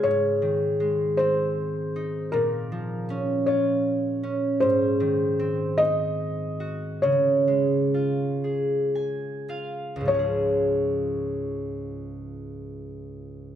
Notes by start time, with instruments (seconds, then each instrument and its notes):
Already playing: harp F4 G#4 C#5 G#5
0.03 harp G#2, felt piano C#5
0.42 harp D#3
0.80 harp G#3
1.17 harp C4, felt piano C5
1.96 harp D#4
2.32 harp A#2, felt piano A#4
2.72 harp F3
3.10 harp C#4
3.46 harp F4, felt piano C#5
4.23 harp C#4
4.60 harp G#2, felt piano C5
5.00 harp D#3
5.39 harp C4
5.78 harp D#4, felt piano D#5
6.60 harp F#4
7.02 harp C#3, felt piano C#5
7.48 harp G#3
7.94 harp F4
8.44 harp G#4
8.95 harp G#5
9.49 harp F4 F5
9.96 harp C#2
10.01 harp G#2
10.05 harp F3, felt piano C#5
10.10 harp G#3
10.14 harp C#4
10.19 harp G#4